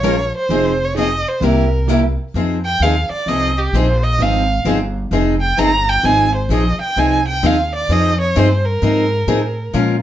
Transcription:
Already playing: upright bass A#1, violin C#5
0.03 steel-string acoustic guitar F3 G#3 C#4 F4 A#4
0.38 violin C5
0.49 upright bass F1, steel-string acoustic guitar F3 C4 D#4 G#4
0.84 violin C#5
0.94 steel-string acoustic guitar F3 C4 D#4
0.98 steel-string acoustic guitar D#4 G#4, violin D#5
1.29 violin C5
1.41 upright bass C2, steel-string acoustic guitar C3 G3 A#3 E4 G4, violin A#4
1.89 steel-string acoustic guitar C3 G3 A#3 E4 G4
2.34 upright bass F2, steel-string acoustic guitar F3 C4 D#4 G#4
2.65 violin G5
2.80 upright bass D#2, steel-string acoustic guitar F3 C4 D#4 G#4, violin F5
3.10 violin D5, muted upright bass stroke
3.26 upright bass C2, steel-string acoustic guitar F3 C4 D#4 G#4, violin D#5
3.58 violin G4
3.73 upright bass A#1, steel-string acoustic guitar F3 C4 D#4 G#4, violin C5
4.04 violin D#5
4.18 upright bass G#1, steel-string acoustic guitar F3 C4 D#4 G#4, violin F5
4.65 upright bass G1, steel-string acoustic guitar F3 C4 D#4 G#4
5.11 upright bass F1, steel-string acoustic guitar F3 C4 D#4 G#4
5.41 violin G5
5.57 upright bass G1, steel-string acoustic guitar F3 C4 D#4 G#4, violin A#5
5.89 violin G5
6.03 upright bass G#1, steel-string acoustic guitar F3 C4 D#4 G#4, violin G#5
6.36 violin C5
6.49 upright bass A#1, steel-string acoustic guitar F3 C4 D#4 G#4
6.53 violin D#5
6.78 violin G5, muted upright bass stroke
6.96 upright bass C2, steel-string acoustic guitar F3 C4 D#4 G#4, violin G#5
7.28 violin G5
7.43 upright bass D#2, steel-string acoustic guitar F3 C4 D#4 G#4, violin F5
7.76 violin D5
7.89 upright bass F2, steel-string acoustic guitar F3 C4 D#4 G#4, violin D#5
8.21 violin C#5
8.36 upright bass G2, steel-string acoustic guitar F3 C4 D#4 G#4, violin C5
8.65 violin A#4
8.82 upright bass G#2, steel-string acoustic guitar F3 C4 D#4 G#4
9.27 upright bass A2, steel-string acoustic guitar F3 C4 D#4 G#4
9.73 upright bass A#2, steel-string acoustic guitar F3 G#3 C#4 F4 A#4

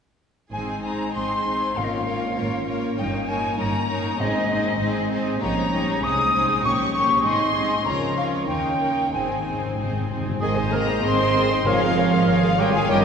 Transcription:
0.51 double bass section G#1, cello section G#2, french horn section G#3 D#4, viola section C4 D#4, violin section G#4 C5 G#5, flute G#5
0.83 viola section C4 D#4, violin section G#4 C5 A#5, flute A#5
1.14 double bass section G#1, cello section G#2, viola section C4 D#4, violin section G#4 C5 C6, flute C6
1.48 viola section C4 D#4, violin section G#4 C5
1.75 double bass section G#1, timpani G#2, cello section G#2, french horn section A#3 C#4, viola section A#3 F4, violin section A#4 C#5 F5, flute F5
1.83 flute D#5
1.90 flute F5
2.07 viola section A#3 F4, violin section A#4 C#5
2.36 double bass section G#1, cello section G#2, viola section A#3 F4, violin section A#4 C#5
2.66 viola section A#3 F4, violin section A#4 C#5
2.97 double bass section G1, cello section G2, viola section A#3 D#4, violin section A#4 C#5 G5, flute G5
3.27 viola section A#3 D#4, violin section A#4 C#5 G#5, flute G#5
3.58 double bass section G1, cello section G2, viola section A#3 D#4, violin section A#4 C#5 A#5, flute A#5
3.89 viola section A#3 D#4, violin section A#4 C#5
4.19 double bass section G#1, timpani G#2, cello section G#2, french horn section G#3 C4, viola section C4 D#4, violin section G#4 C5 D#5, flute D#5
4.51 viola section C4 D#4, violin section G#4 C5
4.80 double bass section G#1, cello section G#2, viola section C4 D#4, violin section G#4 C5
5.10 viola section C4 D#4, violin section G#4 C5
5.40 double bass section A#1, cello section A#2, french horn section G3 C#4, viola section A#3 D#4, violin section G4 C#5 A#5, flute A#5
5.71 viola section A#3 D#4, violin section G4 C#5
6.03 double bass section C2, cello section C3, french horn section G#3 C4, viola section G#3 D#4, violin section G#4 C5 D#6, flute D#6
6.35 viola section G#3 D#4, violin section G#4 C5
6.64 double bass section A#1, cello section A#2, french horn section G3 C#4, viola section A#3 G4, violin section G4 C#5 C#6, flute C#6
6.95 viola section A#3 G4, violin section G4 C#5 C#6, flute C#6
7.24 double bass section G#1, cello section G#2, french horn section G#3 D#4, viola section C4 D#4, violin section G#4 D#5 C6, flute C6
7.55 viola section C4 D#4, violin section G#4 D#5
7.85 double bass section C#2, cello section C#3, french horn section F3 C#4, viola section C#4 F4, violin section A#4 C#5 A#5, flute A#5
8.17 viola section C#4 F4, violin section A#4 C#5 F5, flute F5
8.47 double bass section D#2, cello section D#3, french horn section D#3 C#4, viola section A#3 D#4, violin section A#4 C#5 G5, flute G5
8.80 viola section A#3 D#4, violin section A#4 C#5
9.12 double bass section G#1, cello section G#2, timpani G#2, french horn section D#3 C4, viola section C4 D#4, violin section G#4 C5 G#5, flute G#5
9.21 timpani G#2
9.30 timpani G#2
9.37 timpani G#2
9.44 timpani G#2, viola section C4 D#4, violin section G#4 C5
9.53 timpani G#2
9.60 timpani G#2
9.67 timpani G#2
9.76 double bass section G#1, timpani G#2, cello section G#2, viola section C4 D#4, violin section G#4
9.80 timpani G#2, violin section C5
9.91 timpani G#2
9.98 timpani G#2
10.06 timpani G#2, viola section C4, violin section C5
10.11 timpani G#2, viola section D#4, violin section G#4
10.21 timpani G#2
10.29 timpani G#2
10.40 double bass section G#1, bassoon D#3, cello section G#3, viola section C4 G#4, french horn section D#4 G#4, cor anglais G#4, clarinet G#4, violin section C5 D#5 G#5, flute G#5
10.57 viola section D#4 C5, violin section C5 D#5
10.72 bassoon D#3, cello section A#3, viola section C4 G#4, clarinet G#4, cor anglais A#4, violin section C5 D#5 A#5, flute A#5
10.87 viola section D#4 C5, violin section C5 D#5
11.03 double bass section G#1, bassoon D#3, cello section C4, viola section C4 G#4, clarinet G#4, cor anglais C5, violin section C5 D#5 C6, flute C6
11.20 viola section D#4 C5, violin section C5 D#5
11.35 bassoon D#3, viola section C4 G#4, clarinet G#4, violin section C5 D#5
11.51 viola section D#4 C5, violin section C5 D#5
11.65 double bass section G#1, timpani G#2, bassoon C#3, cello section F3, french horn section F4 A#4, cor anglais F4, viola section G#4 A#4, violin section G#4 C#5 F5, clarinet A#4, flute F5
11.82 viola section F4 G#4, violin section A#4 F5
11.97 bassoon C#3, viola section G#4 A#4, violin section G#4 C#5, clarinet A#4
12.12 viola section F4 G#4, violin section A#4 F5
12.27 double bass section G#1, bassoon C#3, viola section G#4 A#4, violin section G#4 C#5, clarinet A#4
12.44 viola section F4 G#4, violin section A#4 F5
12.58 bassoon C#3, cello section G3, cor anglais G4, viola section G#4 A#4, violin section G#4 C#5 G5, clarinet A#4, flute G5
12.73 cello section G#3, viola section F4 G#4, cor anglais G#4, violin section A#4 F5 G#5, flute G#5
12.88 double bass section G1, bassoon D#3, cello section G3, viola section C#4 A#4, cor anglais G4, clarinet C#5, french horn section C#5, violin section D#5 G5, flute G5

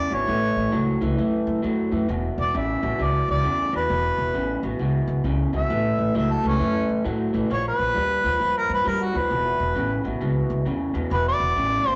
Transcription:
Already playing: harmonica D5
0.10 upright bass G#1, clean electric guitar E2 B2
0.14 harmonica C#5
0.27 upright bass A1, clean electric guitar A2 E3
0.57 upright bass A1
0.72 upright bass C#2, clean electric guitar A2 F#3
1.01 upright bass C#2, clean electric guitar A2 E3
1.17 upright bass F#2, clean electric guitar A2 E3
1.47 upright bass F#2
1.62 upright bass F#2, clean electric guitar A2 F#3
1.92 upright bass F#2, clean electric guitar A2 E3
2.08 upright bass E1, clean electric guitar E2 B2
2.38 upright bass E1, harmonica D5
2.54 upright bass A1, clean electric guitar E2 C#3, harmonica E5
2.82 upright bass A1, clean electric guitar E2 B2
2.99 upright bass C#2, clean electric guitar E2 B2
3.03 harmonica D5
3.28 upright bass C#2, harmonica D5
3.43 clean electric guitar E2 C#3, upright bass E2
3.72 clean electric guitar E2 B2, upright bass E2
3.77 harmonica B4
3.89 upright bass E1, clean electric guitar E2 B2
4.18 upright bass E1
4.34 upright bass A1, clean electric guitar E2 C#3
4.63 upright bass A1, clean electric guitar E2 B2
4.79 upright bass C#2, clean electric guitar E2 B2
5.08 upright bass C#2
5.24 upright bass C#2, clean electric guitar E2 C#3
5.53 upright bass C#2, clean electric guitar E2 B2
5.57 harmonica E5
5.70 upright bass A1, clean electric guitar A2 E3
5.99 upright bass A1
6.15 upright bass C#2, clean electric guitar A2 F#3, harmonica E5
6.33 harmonica A4
6.44 upright bass C#2, clean electric guitar A2 E3
6.48 harmonica C#4
6.59 upright bass F#2, clean electric guitar A2 E3
6.89 upright bass F#2
7.05 clean electric guitar A2 F#3, upright bass A2
7.33 upright bass A1, clean electric guitar A2 E3
7.50 upright bass A#1, clean electric guitar A#2 F3, harmonica C#5
7.68 harmonica B4
7.79 upright bass A#1
7.94 upright bass D#2, clean electric guitar A#2 G3
8.24 upright bass D#2, clean electric guitar A#2 F3
8.40 upright bass G2, clean electric guitar A#2 F3
8.58 harmonica A#4
8.70 upright bass G2
8.74 harmonica B4
8.84 upright bass G2, clean electric guitar A#2 G3, harmonica A#4
9.04 harmonica F#4
9.13 upright bass D#2, clean electric guitar A#2 F3
9.18 harmonica B4
9.30 upright bass E1, clean electric guitar E2 B2
9.60 upright bass E1
9.75 upright bass A1, clean electric guitar E2 C#3
10.04 upright bass A1, clean electric guitar E2 B2
10.21 upright bass C#2, clean electric guitar E2 B2
10.50 upright bass C#2
10.65 clean electric guitar E2 C#3, upright bass E2
10.94 clean electric guitar E2 B2, upright bass E2
11.11 upright bass E1, clean electric guitar E2 B2, harmonica B4
11.29 harmonica D5
11.40 upright bass E1
11.56 upright bass A1, clean electric guitar E2 C#3
11.85 upright bass A1, clean electric guitar E2 B2, harmonica C5

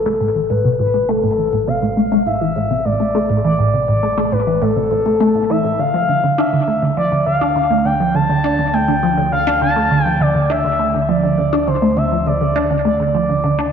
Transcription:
Already playing: synth drone A1, analog synth lead A4
0.06 synth arpeggio sound A3
0.21 synth arpeggio sound A2
0.35 synth arpeggio sound E3
0.50 synth arpeggio sound A2, analog synth lead B4
0.65 synth arpeggio sound C3
0.79 synth arpeggio sound A2, analog synth lead B4
0.94 synth arpeggio sound A3
1.09 synth arpeggio sound A3, analog synth lead A4
1.24 synth arpeggio sound A2
1.38 synth arpeggio sound E3
1.53 synth arpeggio sound A2
1.68 synth arpeggio sound C3, analog synth lead F5
1.82 synth arpeggio sound A2
1.97 synth arpeggio sound A3
2.12 synth arpeggio sound A3
2.26 synth arpeggio sound A2, analog synth lead E5
2.41 synth arpeggio sound E3
2.56 synth arpeggio sound A2
2.71 synth arpeggio sound C3
2.85 synth arpeggio sound A2, analog synth lead D5
3.00 synth arpeggio sound A3
3.15 synth arpeggio sound A3
3.30 synth arpeggio sound A2
3.44 synth arpeggio sound E3, analog synth lead D5
3.59 synth arpeggio sound A2
3.74 synth arpeggio sound C3
3.88 synth arpeggio sound A2
4.03 synth arpeggio sound A3
4.18 synth arpeggio sound A3
4.32 synth arpeggio sound A2, analog synth lead B4
4.47 synth arpeggio sound E3
4.62 synth arpeggio sound A2, analog synth lead A4
4.76 synth arpeggio sound C3
4.91 synth arpeggio sound A2
5.06 synth arpeggio sound A3
5.20 synth arpeggio sound A3
5.35 synth arpeggio sound A2
5.50 synth arpeggio sound E3, analog synth lead E5
5.65 synth arpeggio sound A2
5.79 synth drone D2, synth arpeggio sound D3, analog synth lead F5
5.94 synth arpeggio sound F3
6.09 synth arpeggio sound D3
6.24 synth arpeggio sound D3
6.38 synth arpeggio sound D4, analog synth lead E5
6.53 synth arpeggio sound D3
6.68 synth arpeggio sound A3
6.82 synth arpeggio sound D3
6.97 synth arpeggio sound F3, analog synth lead D5
7.12 synth arpeggio sound D3
7.26 synth arpeggio sound D3, analog synth lead F5
7.41 synth arpeggio sound D4
7.56 synth arpeggio sound D3
7.71 synth arpeggio sound A3
7.85 synth arpeggio sound D3, analog synth lead G5
8.00 synth arpeggio sound F3
8.15 synth arpeggio sound D3, analog synth lead A5
8.30 synth arpeggio sound D3
8.44 synth arpeggio sound D4
8.59 synth arpeggio sound D3
8.74 synth arpeggio sound A3, analog synth lead G5
8.88 synth arpeggio sound D3
9.03 synth arpeggio sound F3
9.18 synth arpeggio sound D3
9.32 synth arpeggio sound D3, analog synth lead F5
9.47 synth arpeggio sound D4
9.62 synth arpeggio sound D3, analog synth lead A5
9.76 synth arpeggio sound A3
9.91 synth arpeggio sound D3
10.04 synth arpeggio sound F3, analog synth lead G5
10.21 synth arpeggio sound D3, analog synth lead D5
10.35 synth arpeggio sound D3
10.50 synth arpeggio sound D4, analog synth lead E5
10.65 synth arpeggio sound D3
10.79 synth arpeggio sound A3
10.94 synth arpeggio sound D3
11.02 analog synth lead E5
11.09 synth arpeggio sound F3, analog synth lead D5
11.23 synth arpeggio sound D3
11.38 synth arpeggio sound D3
11.53 synth arpeggio sound D4
11.68 synth arpeggio sound D3, analog synth lead C5
11.82 synth arpeggio sound A3
11.97 synth arpeggio sound D3, analog synth lead E5
12.12 synth arpeggio sound F3
12.26 synth arpeggio sound D3, analog synth lead D5
12.41 synth arpeggio sound D3
12.56 synth arpeggio sound D4
12.71 synth arpeggio sound D3
12.85 synth arpeggio sound A3, analog synth lead D5
13.00 synth arpeggio sound D3
13.15 synth arpeggio sound F3
13.29 synth arpeggio sound D3
13.44 synth arpeggio sound D3
13.59 synth arpeggio sound D4

